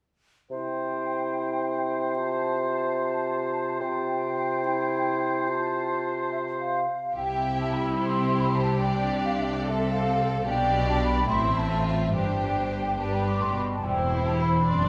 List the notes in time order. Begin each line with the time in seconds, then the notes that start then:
0.51 C3 E4 C5 G5
2.17 F4 A5
3.81 C3 C5 G5
4.63 E4
5.47 F4 A5
6.31 E5
6.59 F5
7.16 C2 C3 E4 G4 E5 G5
7.59 A5
7.73 B5
7.99 G4 C5 C6
8.41 B5
8.54 A5
8.82 D4 D5 G5
9.25 F5
9.39 E5
9.65 C4 A4 E5
9.93 F5
10.47 B1 B2 D4 G4 D5 G5
10.90 A5
11.01 B5
11.29 A1 A2 C4 E4 E5 C6
11.58 A5
11.72 F4
11.86 E5
12.14 G1 G2 D4 G4 C5 G5
12.99 G2 D4 G4 B4 A5
13.14 B5
13.28 D6
13.41 A2 C6
13.56 B2 B5
13.71 A5
13.83 E1 E2 G3 E4 C5 G5
13.99 C4
14.13 E4
14.26 G4 A5
14.40 E4 B5
14.54 C4
14.68 F#1 F#2 C4 D4 D5 C6
14.81 D4